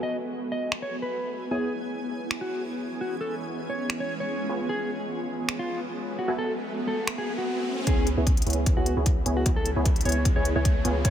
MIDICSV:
0, 0, Header, 1, 7, 480
1, 0, Start_track
1, 0, Key_signature, 4, "minor"
1, 0, Tempo, 397351
1, 1826, Time_signature, 4, 2, 24, 8
1, 13410, End_track
2, 0, Start_track
2, 0, Title_t, "Clean electric guitar"
2, 0, Program_c, 0, 27
2, 36, Note_on_c, 0, 75, 81
2, 194, Note_off_c, 0, 75, 0
2, 626, Note_on_c, 0, 75, 79
2, 872, Note_off_c, 0, 75, 0
2, 995, Note_on_c, 0, 73, 80
2, 1153, Note_off_c, 0, 73, 0
2, 1236, Note_on_c, 0, 71, 73
2, 1737, Note_off_c, 0, 71, 0
2, 1829, Note_on_c, 0, 68, 87
2, 2073, Note_off_c, 0, 68, 0
2, 2913, Note_on_c, 0, 66, 85
2, 3159, Note_off_c, 0, 66, 0
2, 3635, Note_on_c, 0, 66, 74
2, 3793, Note_off_c, 0, 66, 0
2, 3874, Note_on_c, 0, 69, 82
2, 4032, Note_off_c, 0, 69, 0
2, 4464, Note_on_c, 0, 73, 82
2, 4711, Note_off_c, 0, 73, 0
2, 4836, Note_on_c, 0, 73, 83
2, 4993, Note_off_c, 0, 73, 0
2, 5077, Note_on_c, 0, 73, 83
2, 5578, Note_off_c, 0, 73, 0
2, 5669, Note_on_c, 0, 68, 86
2, 5913, Note_off_c, 0, 68, 0
2, 6756, Note_on_c, 0, 65, 84
2, 7000, Note_off_c, 0, 65, 0
2, 7473, Note_on_c, 0, 66, 77
2, 7632, Note_off_c, 0, 66, 0
2, 7713, Note_on_c, 0, 69, 87
2, 7872, Note_off_c, 0, 69, 0
2, 8307, Note_on_c, 0, 69, 87
2, 8552, Note_off_c, 0, 69, 0
2, 8676, Note_on_c, 0, 68, 84
2, 8834, Note_off_c, 0, 68, 0
2, 8915, Note_on_c, 0, 66, 81
2, 9417, Note_off_c, 0, 66, 0
2, 9505, Note_on_c, 0, 68, 90
2, 9752, Note_off_c, 0, 68, 0
2, 10592, Note_on_c, 0, 66, 85
2, 10838, Note_off_c, 0, 66, 0
2, 11316, Note_on_c, 0, 66, 77
2, 11473, Note_off_c, 0, 66, 0
2, 11553, Note_on_c, 0, 69, 90
2, 11712, Note_off_c, 0, 69, 0
2, 12147, Note_on_c, 0, 73, 86
2, 12392, Note_off_c, 0, 73, 0
2, 12513, Note_on_c, 0, 73, 89
2, 12672, Note_off_c, 0, 73, 0
2, 12751, Note_on_c, 0, 73, 83
2, 13255, Note_off_c, 0, 73, 0
2, 13345, Note_on_c, 0, 73, 93
2, 13410, Note_off_c, 0, 73, 0
2, 13410, End_track
3, 0, Start_track
3, 0, Title_t, "Supersaw synth"
3, 0, Program_c, 1, 81
3, 0, Note_on_c, 1, 59, 78
3, 0, Note_on_c, 1, 66, 69
3, 0, Note_on_c, 1, 69, 69
3, 0, Note_on_c, 1, 76, 68
3, 0, Note_on_c, 1, 80, 82
3, 1799, Note_off_c, 1, 80, 0
3, 1800, Note_off_c, 1, 59, 0
3, 1800, Note_off_c, 1, 66, 0
3, 1800, Note_off_c, 1, 69, 0
3, 1800, Note_off_c, 1, 76, 0
3, 1825, Note_on_c, 1, 64, 68
3, 1825, Note_on_c, 1, 73, 71
3, 1826, Note_on_c, 1, 59, 76
3, 1826, Note_on_c, 1, 68, 71
3, 1826, Note_on_c, 1, 80, 83
3, 5399, Note_off_c, 1, 59, 0
3, 5399, Note_off_c, 1, 64, 0
3, 5399, Note_off_c, 1, 68, 0
3, 5399, Note_off_c, 1, 73, 0
3, 5400, Note_off_c, 1, 80, 0
3, 5428, Note_on_c, 1, 59, 75
3, 5429, Note_on_c, 1, 65, 70
3, 5429, Note_on_c, 1, 68, 67
3, 5429, Note_on_c, 1, 73, 68
3, 5429, Note_on_c, 1, 80, 83
3, 7561, Note_off_c, 1, 59, 0
3, 7561, Note_off_c, 1, 65, 0
3, 7561, Note_off_c, 1, 68, 0
3, 7561, Note_off_c, 1, 73, 0
3, 7561, Note_off_c, 1, 80, 0
3, 7588, Note_on_c, 1, 59, 74
3, 7588, Note_on_c, 1, 66, 72
3, 7588, Note_on_c, 1, 69, 70
3, 7588, Note_on_c, 1, 76, 69
3, 7588, Note_on_c, 1, 80, 88
3, 9480, Note_off_c, 1, 59, 0
3, 9480, Note_off_c, 1, 66, 0
3, 9480, Note_off_c, 1, 69, 0
3, 9480, Note_off_c, 1, 76, 0
3, 9480, Note_off_c, 1, 80, 0
3, 9506, Note_on_c, 1, 59, 73
3, 9507, Note_on_c, 1, 64, 66
3, 9507, Note_on_c, 1, 73, 65
3, 9843, Note_off_c, 1, 59, 0
3, 9844, Note_off_c, 1, 64, 0
3, 9844, Note_off_c, 1, 73, 0
3, 9873, Note_on_c, 1, 59, 91
3, 9873, Note_on_c, 1, 68, 83
3, 9873, Note_on_c, 1, 80, 108
3, 9874, Note_on_c, 1, 64, 88
3, 9874, Note_on_c, 1, 73, 91
3, 10034, Note_off_c, 1, 59, 0
3, 10034, Note_off_c, 1, 64, 0
3, 10034, Note_off_c, 1, 68, 0
3, 10034, Note_off_c, 1, 80, 0
3, 10035, Note_off_c, 1, 73, 0
3, 10224, Note_on_c, 1, 59, 83
3, 10224, Note_on_c, 1, 68, 79
3, 10224, Note_on_c, 1, 73, 82
3, 10224, Note_on_c, 1, 80, 95
3, 10225, Note_on_c, 1, 64, 79
3, 10563, Note_off_c, 1, 59, 0
3, 10563, Note_off_c, 1, 64, 0
3, 10563, Note_off_c, 1, 68, 0
3, 10563, Note_off_c, 1, 73, 0
3, 10563, Note_off_c, 1, 80, 0
3, 10594, Note_on_c, 1, 59, 98
3, 10594, Note_on_c, 1, 68, 90
3, 10594, Note_on_c, 1, 73, 91
3, 10594, Note_on_c, 1, 80, 107
3, 10595, Note_on_c, 1, 64, 92
3, 10803, Note_off_c, 1, 80, 0
3, 10804, Note_off_c, 1, 59, 0
3, 10804, Note_off_c, 1, 64, 0
3, 10804, Note_off_c, 1, 68, 0
3, 10804, Note_off_c, 1, 73, 0
3, 10833, Note_on_c, 1, 73, 79
3, 10833, Note_on_c, 1, 80, 96
3, 10834, Note_on_c, 1, 59, 92
3, 10834, Note_on_c, 1, 64, 81
3, 10834, Note_on_c, 1, 68, 81
3, 11097, Note_off_c, 1, 59, 0
3, 11097, Note_off_c, 1, 64, 0
3, 11097, Note_off_c, 1, 68, 0
3, 11097, Note_off_c, 1, 73, 0
3, 11097, Note_off_c, 1, 80, 0
3, 11184, Note_on_c, 1, 73, 81
3, 11185, Note_on_c, 1, 64, 85
3, 11185, Note_on_c, 1, 68, 81
3, 11185, Note_on_c, 1, 80, 99
3, 11186, Note_on_c, 1, 59, 88
3, 11398, Note_off_c, 1, 73, 0
3, 11399, Note_off_c, 1, 59, 0
3, 11399, Note_off_c, 1, 64, 0
3, 11399, Note_off_c, 1, 68, 0
3, 11399, Note_off_c, 1, 80, 0
3, 11425, Note_on_c, 1, 68, 66
3, 11425, Note_on_c, 1, 73, 68
3, 11425, Note_on_c, 1, 80, 79
3, 11426, Note_on_c, 1, 59, 71
3, 11426, Note_on_c, 1, 64, 68
3, 11763, Note_off_c, 1, 64, 0
3, 11763, Note_off_c, 1, 68, 0
3, 11763, Note_off_c, 1, 73, 0
3, 11763, Note_off_c, 1, 80, 0
3, 11764, Note_off_c, 1, 59, 0
3, 11793, Note_on_c, 1, 59, 94
3, 11793, Note_on_c, 1, 68, 87
3, 11793, Note_on_c, 1, 73, 86
3, 11794, Note_on_c, 1, 64, 89
3, 11794, Note_on_c, 1, 80, 107
3, 11954, Note_off_c, 1, 59, 0
3, 11954, Note_off_c, 1, 68, 0
3, 11954, Note_off_c, 1, 73, 0
3, 11955, Note_off_c, 1, 64, 0
3, 11955, Note_off_c, 1, 80, 0
3, 12144, Note_on_c, 1, 68, 78
3, 12144, Note_on_c, 1, 73, 80
3, 12145, Note_on_c, 1, 59, 82
3, 12145, Note_on_c, 1, 64, 76
3, 12145, Note_on_c, 1, 80, 94
3, 12483, Note_off_c, 1, 59, 0
3, 12483, Note_off_c, 1, 64, 0
3, 12483, Note_off_c, 1, 68, 0
3, 12483, Note_off_c, 1, 73, 0
3, 12483, Note_off_c, 1, 80, 0
3, 12512, Note_on_c, 1, 59, 100
3, 12513, Note_on_c, 1, 73, 91
3, 12513, Note_on_c, 1, 80, 112
3, 12514, Note_on_c, 1, 64, 87
3, 12514, Note_on_c, 1, 68, 91
3, 12723, Note_off_c, 1, 59, 0
3, 12723, Note_off_c, 1, 64, 0
3, 12723, Note_off_c, 1, 68, 0
3, 12723, Note_off_c, 1, 73, 0
3, 12723, Note_off_c, 1, 80, 0
3, 12752, Note_on_c, 1, 64, 80
3, 12752, Note_on_c, 1, 68, 85
3, 12752, Note_on_c, 1, 73, 81
3, 12753, Note_on_c, 1, 59, 84
3, 12753, Note_on_c, 1, 80, 100
3, 13017, Note_off_c, 1, 59, 0
3, 13017, Note_off_c, 1, 64, 0
3, 13017, Note_off_c, 1, 68, 0
3, 13017, Note_off_c, 1, 73, 0
3, 13017, Note_off_c, 1, 80, 0
3, 13103, Note_on_c, 1, 68, 82
3, 13103, Note_on_c, 1, 73, 81
3, 13103, Note_on_c, 1, 80, 97
3, 13104, Note_on_c, 1, 59, 89
3, 13104, Note_on_c, 1, 65, 79
3, 13318, Note_off_c, 1, 59, 0
3, 13318, Note_off_c, 1, 65, 0
3, 13318, Note_off_c, 1, 68, 0
3, 13318, Note_off_c, 1, 73, 0
3, 13318, Note_off_c, 1, 80, 0
3, 13342, Note_on_c, 1, 59, 75
3, 13342, Note_on_c, 1, 65, 68
3, 13343, Note_on_c, 1, 68, 67
3, 13343, Note_on_c, 1, 73, 67
3, 13343, Note_on_c, 1, 80, 81
3, 13410, Note_off_c, 1, 59, 0
3, 13410, Note_off_c, 1, 65, 0
3, 13410, Note_off_c, 1, 68, 0
3, 13410, Note_off_c, 1, 73, 0
3, 13410, Note_off_c, 1, 80, 0
3, 13410, End_track
4, 0, Start_track
4, 0, Title_t, "Ambient pad"
4, 0, Program_c, 2, 92
4, 0, Note_on_c, 2, 54, 83
4, 0, Note_on_c, 2, 57, 74
4, 0, Note_on_c, 2, 59, 76
4, 0, Note_on_c, 2, 64, 75
4, 0, Note_on_c, 2, 80, 92
4, 1807, Note_off_c, 2, 54, 0
4, 1807, Note_off_c, 2, 57, 0
4, 1807, Note_off_c, 2, 64, 0
4, 1830, Note_on_c, 2, 52, 78
4, 1830, Note_on_c, 2, 56, 74
4, 1830, Note_on_c, 2, 61, 73
4, 5378, Note_off_c, 2, 59, 0
4, 5392, Note_off_c, 2, 52, 0
4, 5431, Note_on_c, 2, 53, 77
4, 5431, Note_on_c, 2, 59, 75
4, 7540, Note_off_c, 2, 56, 0
4, 7540, Note_off_c, 2, 61, 0
4, 7567, Note_off_c, 2, 53, 0
4, 7586, Note_on_c, 2, 64, 78
4, 7587, Note_on_c, 2, 54, 82
4, 7587, Note_on_c, 2, 57, 74
4, 9458, Note_off_c, 2, 80, 0
4, 9468, Note_off_c, 2, 59, 0
4, 9487, Note_off_c, 2, 57, 0
4, 9487, Note_off_c, 2, 64, 0
4, 9488, Note_off_c, 2, 54, 0
4, 9507, Note_on_c, 2, 49, 82
4, 9507, Note_on_c, 2, 52, 77
4, 9507, Note_on_c, 2, 59, 77
4, 9507, Note_on_c, 2, 64, 93
4, 9508, Note_on_c, 2, 56, 77
4, 13070, Note_off_c, 2, 52, 0
4, 13071, Note_off_c, 2, 64, 0
4, 13108, Note_on_c, 2, 53, 76
4, 13108, Note_on_c, 2, 65, 93
4, 13410, Note_off_c, 2, 49, 0
4, 13410, Note_off_c, 2, 53, 0
4, 13410, Note_off_c, 2, 56, 0
4, 13410, Note_off_c, 2, 59, 0
4, 13410, Note_off_c, 2, 65, 0
4, 13410, End_track
5, 0, Start_track
5, 0, Title_t, "808-style bass"
5, 0, Program_c, 3, 38
5, 9506, Note_on_c, 3, 37, 92
5, 9849, Note_off_c, 3, 37, 0
5, 9873, Note_on_c, 3, 37, 91
5, 10203, Note_off_c, 3, 37, 0
5, 10225, Note_on_c, 3, 37, 88
5, 10568, Note_off_c, 3, 37, 0
5, 10592, Note_on_c, 3, 37, 91
5, 10807, Note_off_c, 3, 37, 0
5, 10832, Note_on_c, 3, 37, 95
5, 11163, Note_off_c, 3, 37, 0
5, 11185, Note_on_c, 3, 37, 92
5, 11403, Note_off_c, 3, 37, 0
5, 11427, Note_on_c, 3, 37, 95
5, 11769, Note_off_c, 3, 37, 0
5, 11792, Note_on_c, 3, 37, 95
5, 12123, Note_off_c, 3, 37, 0
5, 12143, Note_on_c, 3, 37, 95
5, 12487, Note_off_c, 3, 37, 0
5, 12512, Note_on_c, 3, 37, 89
5, 12728, Note_off_c, 3, 37, 0
5, 12751, Note_on_c, 3, 37, 95
5, 13082, Note_off_c, 3, 37, 0
5, 13106, Note_on_c, 3, 37, 93
5, 13324, Note_off_c, 3, 37, 0
5, 13345, Note_on_c, 3, 37, 89
5, 13410, Note_off_c, 3, 37, 0
5, 13410, End_track
6, 0, Start_track
6, 0, Title_t, "Riser"
6, 0, Program_c, 4, 103
6, 5666, Note_on_c, 4, 60, 71
6, 9506, Note_off_c, 4, 60, 0
6, 9506, Note_on_c, 4, 60, 74
6, 13410, Note_off_c, 4, 60, 0
6, 13410, End_track
7, 0, Start_track
7, 0, Title_t, "Drums"
7, 868, Note_on_c, 9, 26, 81
7, 989, Note_off_c, 9, 26, 0
7, 2788, Note_on_c, 9, 26, 82
7, 2908, Note_off_c, 9, 26, 0
7, 4708, Note_on_c, 9, 26, 81
7, 4829, Note_off_c, 9, 26, 0
7, 6627, Note_on_c, 9, 26, 82
7, 6748, Note_off_c, 9, 26, 0
7, 8546, Note_on_c, 9, 26, 91
7, 8667, Note_off_c, 9, 26, 0
7, 9505, Note_on_c, 9, 42, 74
7, 9507, Note_on_c, 9, 36, 86
7, 9626, Note_off_c, 9, 42, 0
7, 9628, Note_off_c, 9, 36, 0
7, 9745, Note_on_c, 9, 42, 62
7, 9866, Note_off_c, 9, 42, 0
7, 9987, Note_on_c, 9, 36, 91
7, 9987, Note_on_c, 9, 42, 71
7, 10107, Note_off_c, 9, 42, 0
7, 10108, Note_off_c, 9, 36, 0
7, 10115, Note_on_c, 9, 42, 47
7, 10171, Note_off_c, 9, 42, 0
7, 10171, Note_on_c, 9, 42, 64
7, 10227, Note_off_c, 9, 42, 0
7, 10227, Note_on_c, 9, 42, 47
7, 10269, Note_off_c, 9, 42, 0
7, 10269, Note_on_c, 9, 42, 60
7, 10306, Note_off_c, 9, 42, 0
7, 10306, Note_on_c, 9, 42, 73
7, 10426, Note_off_c, 9, 42, 0
7, 10465, Note_on_c, 9, 42, 76
7, 10467, Note_on_c, 9, 36, 95
7, 10586, Note_off_c, 9, 42, 0
7, 10587, Note_off_c, 9, 36, 0
7, 10705, Note_on_c, 9, 42, 65
7, 10826, Note_off_c, 9, 42, 0
7, 10944, Note_on_c, 9, 42, 83
7, 10947, Note_on_c, 9, 36, 95
7, 11065, Note_off_c, 9, 42, 0
7, 11068, Note_off_c, 9, 36, 0
7, 11185, Note_on_c, 9, 42, 66
7, 11306, Note_off_c, 9, 42, 0
7, 11425, Note_on_c, 9, 42, 75
7, 11427, Note_on_c, 9, 36, 96
7, 11546, Note_off_c, 9, 42, 0
7, 11548, Note_off_c, 9, 36, 0
7, 11664, Note_on_c, 9, 42, 63
7, 11785, Note_off_c, 9, 42, 0
7, 11905, Note_on_c, 9, 42, 72
7, 11907, Note_on_c, 9, 36, 91
7, 12025, Note_off_c, 9, 42, 0
7, 12027, Note_off_c, 9, 36, 0
7, 12032, Note_on_c, 9, 42, 49
7, 12089, Note_off_c, 9, 42, 0
7, 12089, Note_on_c, 9, 42, 61
7, 12146, Note_off_c, 9, 42, 0
7, 12146, Note_on_c, 9, 42, 46
7, 12188, Note_off_c, 9, 42, 0
7, 12188, Note_on_c, 9, 42, 61
7, 12226, Note_off_c, 9, 42, 0
7, 12226, Note_on_c, 9, 42, 72
7, 12347, Note_off_c, 9, 42, 0
7, 12385, Note_on_c, 9, 42, 73
7, 12386, Note_on_c, 9, 36, 91
7, 12506, Note_off_c, 9, 42, 0
7, 12507, Note_off_c, 9, 36, 0
7, 12626, Note_on_c, 9, 42, 57
7, 12747, Note_off_c, 9, 42, 0
7, 12866, Note_on_c, 9, 42, 83
7, 12867, Note_on_c, 9, 36, 96
7, 12987, Note_off_c, 9, 36, 0
7, 12987, Note_off_c, 9, 42, 0
7, 13106, Note_on_c, 9, 42, 63
7, 13227, Note_off_c, 9, 42, 0
7, 13346, Note_on_c, 9, 36, 96
7, 13346, Note_on_c, 9, 42, 72
7, 13410, Note_off_c, 9, 36, 0
7, 13410, Note_off_c, 9, 42, 0
7, 13410, End_track
0, 0, End_of_file